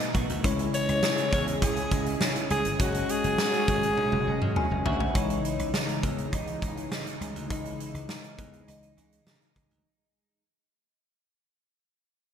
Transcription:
Already playing: B2 D#3 A3 B3 D#4 F#4 B4
0.00 closed hi-hat
0.15 B1 F#4, kick, closed hi-hat
0.29 D2, closed hi-hat
0.43 C#2 C#3 E3 G#3 C#4 E4 G#4 C#5, kick, closed hi-hat
0.59 closed hi-hat
0.73 G#3 C#5, closed hi-hat
0.89 C#2, closed hi-hat
1.03 G#4, snare
1.18 closed hi-hat
1.32 E2 G#3 C#5, kick, closed hi-hat
1.48 closed hi-hat
1.62 C#2 C#4 G#4, kick, closed hi-hat
1.76 closed hi-hat
1.92 C#2 G#3, kick, closed hi-hat
2.06 closed hi-hat
2.21 C#3 C#4, snare
2.36 closed hi-hat
2.50 C#2 G#4, closed hi-hat
2.65 G1, closed hi-hat
2.74 G#4
2.79 F#1 G#3 C#4 F#4 C#5, kick, closed hi-hat
2.94 closed hi-hat
3.09 G#3 G#4, closed hi-hat
3.24 F#1, closed hi-hat
3.38 F#4, snare
3.53 closed hi-hat
3.68 G#1 G#3, kick, closed hi-hat
3.83 closed hi-hat
3.98 C#4, high tom
4.12 F#1, high tom
4.27 F#1 G#3
4.42 F#2, mid tom
4.56 C#4 G#5, mid tom
4.71 F#1
4.86 D2 F#4 E5, floor tom
5.00 floor tom
5.14 C#2 C#3 E3 G#3 D#4 C#5, kick, closed hi-hat
5.30 closed hi-hat
5.44 E3, closed hi-hat
5.59 C#2, closed hi-hat
5.74 D#4, snare
5.89 closed hi-hat
6.03 E2 G#3, kick, closed hi-hat
6.18 closed hi-hat
6.33 C#2 D#4, kick, closed hi-hat
6.47 closed hi-hat
6.62 C#2 G#3, kick, closed hi-hat
6.77 closed hi-hat
6.91 C#3 D#4, snare
7.07 closed hi-hat
7.21 C#2 G#3, closed hi-hat
7.36 D2, closed hi-hat
7.49 C#2 C#3 E3 G#3 D#4 D#5, kick, closed hi-hat
7.65 closed hi-hat
7.80 E3, closed hi-hat
7.94 C#2, closed hi-hat
8.09 D#4, snare
8.24 closed hi-hat
8.38 E2 G#3, kick, closed hi-hat
8.53 closed hi-hat
8.68 C#2 D#4, closed hi-hat
8.83 closed hi-hat
8.97 C#2 G#3, closed hi-hat
9.12 closed hi-hat
9.27 C#3 D#4, snare
9.42 closed hi-hat
9.56 C#2 G#3, kick, closed hi-hat
9.71 D2, closed hi-hat

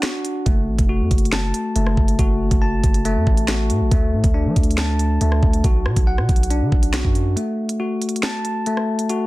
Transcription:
Already playing: D4 F#5
0.03 F#4, snare, closed hi-hat
0.25 closed hi-hat
0.46 F#1 A3, kick, closed hi-hat
0.68 A1
0.79 F1, kick, closed hi-hat
0.89 F#4
1.00 F#2
1.11 F#1, kick, closed hi-hat
1.18 closed hi-hat
1.25 closed hi-hat
1.32 A5, snare
1.54 closed hi-hat
1.76 F#1 A3, closed hi-hat
1.87 cross-stick
1.97 F#1, kick
2.08 closed hi-hat
2.19 F#1 F#4, kick, closed hi-hat
2.51 F#1, kick, closed hi-hat
2.62 A5
2.84 F#1, kick, closed hi-hat
2.94 closed hi-hat
3.05 A3, closed hi-hat
3.16 F#2
3.27 A1, kick
3.37 closed hi-hat
3.48 F#4, snare, closed hi-hat
3.70 A2, closed hi-hat
3.81 A1
3.91 D2 A3, kick, closed hi-hat
4.13 A2
4.24 D2, kick, closed hi-hat
4.34 D4
4.45 F#3
4.56 D2, kick, closed hi-hat
4.63 closed hi-hat
4.71 closed hi-hat
4.78 A5, snare
4.99 closed hi-hat
5.21 D2 A3, closed hi-hat
5.32 cross-stick
5.43 D2, kick
5.53 closed hi-hat
5.64 B1 F#4, kick, closed hi-hat
5.86 B2, cross-stick
5.96 B1, kick, closed hi-hat
6.07 F#5
6.18 B2, cross-stick
6.29 B1, kick, closed hi-hat
6.36 closed hi-hat
6.43 closed hi-hat
6.50 D4, closed hi-hat
6.61 D3
6.72 B1, kick
6.83 closed hi-hat
6.94 F#4, snare, closed hi-hat
7.05 F#2, kick
7.15 closed hi-hat
7.37 A3, closed hi-hat
7.69 closed hi-hat
7.80 F#4
8.02 closed hi-hat
8.09 closed hi-hat
8.16 closed hi-hat
8.23 A5, snare
8.45 closed hi-hat
8.66 A3, closed hi-hat
8.77 cross-stick
8.99 closed hi-hat
9.09 F#4, closed hi-hat

